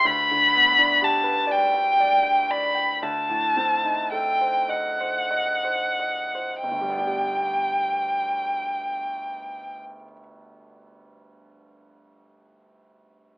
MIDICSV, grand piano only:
0, 0, Header, 1, 2, 480
1, 0, Start_track
1, 0, Key_signature, 1, "major"
1, 0, Tempo, 970874
1, 24, Time_signature, 12, 3, 24, 8
1, 984, Tempo, 1022147
1, 1464, Tempo, 1113173
1, 1944, Tempo, 1200000
1, 2424, Tempo, 1318681
1, 2904, Tempo, 1140684
1, 4824, Tempo, 1109057
1, 5764, End_track
2, 0, Start_track
2, 0, Title_t, "Grand piano"
2, 0, Program_c, 0, 0
2, 0, Control_c, 0, 64, 127
2, 24, Note_on_c, 0, 38, 52
2, 32, Control_c, 0, 64, 0
2, 126, Control_c, 0, 64, 127
2, 154, Note_on_c, 0, 50, 42
2, 271, Note_on_c, 0, 59, 43
2, 339, Note_off_c, 0, 50, 0
2, 385, Note_on_c, 0, 62, 42
2, 456, Note_off_c, 0, 59, 0
2, 505, Note_on_c, 0, 67, 44
2, 572, Note_off_c, 0, 62, 0
2, 612, Note_on_c, 0, 71, 41
2, 693, Note_off_c, 0, 67, 0
2, 727, Note_on_c, 0, 74, 46
2, 808, Note_off_c, 0, 71, 0
2, 859, Note_on_c, 0, 79, 41
2, 928, Note_off_c, 0, 74, 0
2, 989, Note_on_c, 0, 74, 42
2, 1053, Note_off_c, 0, 79, 0
2, 1096, Note_on_c, 0, 79, 41
2, 1175, Note_off_c, 0, 74, 0
2, 1227, Note_on_c, 0, 74, 40
2, 1289, Note_off_c, 0, 79, 0
2, 1339, Note_on_c, 0, 79, 37
2, 1417, Note_off_c, 0, 74, 0
2, 1444, Note_off_c, 0, 38, 0
2, 1463, Note_off_c, 0, 79, 0
2, 1469, Note_on_c, 0, 38, 48
2, 1471, Control_c, 0, 64, 0
2, 1556, Control_c, 0, 64, 127
2, 1584, Note_on_c, 0, 45, 35
2, 1704, Note_on_c, 0, 60, 37
2, 1774, Note_off_c, 0, 45, 0
2, 1818, Note_on_c, 0, 63, 33
2, 1897, Note_off_c, 0, 60, 0
2, 1942, Note_on_c, 0, 69, 35
2, 2012, Note_off_c, 0, 63, 0
2, 2059, Note_on_c, 0, 72, 29
2, 2128, Note_off_c, 0, 69, 0
2, 2170, Note_on_c, 0, 75, 35
2, 2248, Note_off_c, 0, 72, 0
2, 2296, Note_on_c, 0, 72, 35
2, 2369, Note_off_c, 0, 75, 0
2, 2417, Note_on_c, 0, 75, 34
2, 2495, Note_off_c, 0, 72, 0
2, 2540, Note_on_c, 0, 72, 33
2, 2617, Note_off_c, 0, 75, 0
2, 2668, Note_on_c, 0, 75, 29
2, 2745, Note_off_c, 0, 72, 0
2, 2796, Note_on_c, 0, 72, 29
2, 2859, Note_off_c, 0, 75, 0
2, 2891, Note_off_c, 0, 38, 0
2, 2899, Note_on_c, 0, 31, 37
2, 2905, Note_off_c, 0, 72, 0
2, 2912, Control_c, 0, 64, 0
2, 2932, Note_on_c, 0, 38, 33
2, 2974, Note_on_c, 0, 55, 34
2, 2998, Control_c, 0, 64, 127
2, 3009, Note_on_c, 0, 59, 33
2, 3046, Note_on_c, 0, 62, 34
2, 3083, Note_on_c, 0, 67, 33
2, 4217, Note_off_c, 0, 31, 0
2, 4251, Note_off_c, 0, 38, 0
2, 4292, Note_off_c, 0, 55, 0
2, 4328, Note_off_c, 0, 59, 0
2, 4364, Note_off_c, 0, 62, 0
2, 4401, Note_off_c, 0, 67, 0
2, 5764, End_track
0, 0, End_of_file